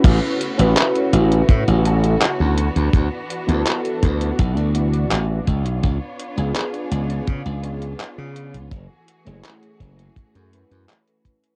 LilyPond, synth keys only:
\new Staff \with { instrumentName = "Synth keys" } { \time 4/4 \key a \major \tempo 4 = 83 <cis' e' fis' b'>8 r16 <cis' e' fis' b'>4.~ <cis' e' fis' b'>16 <cis' e' fis' a'>4 r8 | r8. <b e' fis' a'>4.~ <b e' fis' a'>16 <b e' fis' d''>4 r8 | r8. <b d' eis' gis'>4.~ <b d' eis' gis'>16 <b d' eis' gis'>4. | r8. <a cis' e' gis'>4.~ <a cis' e' gis'>16 <a cis' e' b'>4. | }